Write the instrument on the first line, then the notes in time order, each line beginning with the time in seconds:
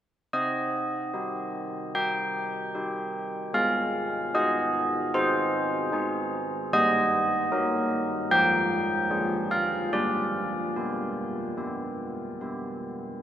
church bells
0.33 C4 D#5
1.14 D#4 G4
1.95 D#4 G4 G5
2.75 D#4 G4
3.54 G#3 F5
4.34 D#4 G#4 D#5
5.14 D#4 G#4 C5
5.92 D#4 G#4
6.73 G3 D#5
7.52 D#4 A#4
8.31 F3 G5
9.10 D4 G#4
9.51 F5
9.93 G3 D5
10.76 B3 G4
11.57 B3 G4
12.41 B3 G4